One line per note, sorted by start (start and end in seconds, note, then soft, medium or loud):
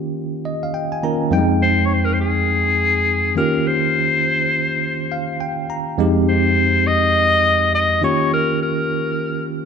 0.00 0.98 D#3 medium
0.00 0.99 A#3 medium
0.00 0.99 C#4 medium
0.00 0.99 F4 medium
0.00 1.00 G4 medium
0.45 0.62 D#5 medium
0.63 0.73 F5 medium
0.74 0.91 G5 medium
0.92 1.02 G#5 medium
1.03 1.32 D#3 soft
1.03 1.32 A#3 soft
1.03 1.32 C#4 soft
1.03 1.32 F4 soft
1.03 1.33 A#4 medium
1.03 1.30 A#5 medium
1.31 3.31 F2 medium
1.31 1.40 G3 medium
1.31 3.32 C4 medium
1.31 3.32 D#4 medium
1.31 3.32 G5 loud
1.38 3.35 G#3 medium
1.62 1.87 C5 loud
1.85 1.95 C#5 medium
1.94 2.06 C5 loud
2.05 2.15 A#4 loud
2.13 2.20 C5 medium
2.21 3.33 G#4 loud
3.35 5.65 D#3 medium
3.35 5.65 A#3 medium
3.35 5.65 C#4 medium
3.35 5.66 F4 medium
3.35 5.66 G4 medium
3.35 3.68 A#4 medium
3.67 5.41 C5 loud
5.12 5.38 F5 medium
5.40 5.67 G5 medium
5.70 5.96 A#5 medium
5.98 7.98 F2 medium
5.98 7.98 G#3 medium
5.98 7.98 C4 medium
5.98 7.99 D#4 medium
5.98 7.99 G4 medium
6.29 6.88 C5 loud
6.87 7.74 D#5 loud
7.75 8.01 D#5 loud
8.02 9.65 D#3 medium
8.02 9.65 A#3 medium
8.02 9.65 C#4 medium
8.02 9.65 F4 medium
8.02 9.65 G4 medium
8.02 8.30 C#5 loud
8.33 8.59 A#4 loud
8.62 9.45 A#4 medium